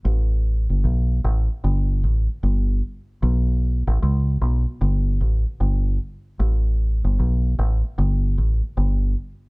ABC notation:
X:1
M:4/4
L:1/16
Q:"Swing 16ths" 1/4=76
K:Glyd
V:1 name="Fingered electric bass" clef=bass
A,,,3 G,,, B,,,2 A,,, z G,,,2 A,,, z G,,,2 z2 | B,,,3 A,,, C,,2 B,,, z G,,,2 A,,, z G,,,2 z2 | A,,,3 G,,, B,,,2 A,,, z G,,,2 A,,, z G,,,2 z2 |]